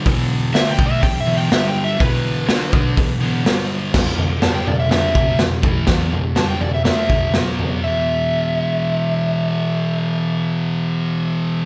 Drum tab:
CC |--------|--------|x-------|--------|
HH |o-o-o-o-|o-o-o-o-|--------|--------|
SD |--o---o-|--o---o-|o-o-o-o-|o-o-o-o-|
FT |--------|--------|oooooooo|oooooooo|
BD |o--oo---|o--oo---|o----o-o|o----o--|

CC |--------|--------|
HH |--------|--------|
SD |--------|--------|
FT |--------|--------|
BD |--------|--------|